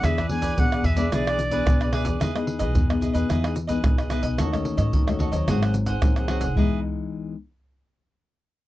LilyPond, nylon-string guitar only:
\new Staff \with { instrumentName = "Nylon-string guitar" } { \time 4/4 \key e \mixolydian \tempo 4 = 110 << { <b d' gis'>16 r16 <b d' gis'>8 <b d' gis'>8 r16 <b d' gis'>16 <b d' gis'>8. <b d' gis'>8. <b d' gis'>8 | \key e \major <b dis' gis'>16 <b dis' gis'>4 <b dis' gis'>8. <b dis' gis'>8 r16 <b dis' gis'>16 <b dis' gis'>16 r16 <b dis' gis'>8 | <a cis' fis'>16 <a cis' fis'>4 <a cis' fis'>8 <fis c' dis'>4 r16 <fis bis dis'>8 <fis bis dis'>16 r16 | <e gis b dis'>8 r2. r8 | } \\ { e4 b,4 e4 b,4 | e4 b,4 e4 b,4 | dis4 dis4 gis,4 dis4 | r1 | } >> }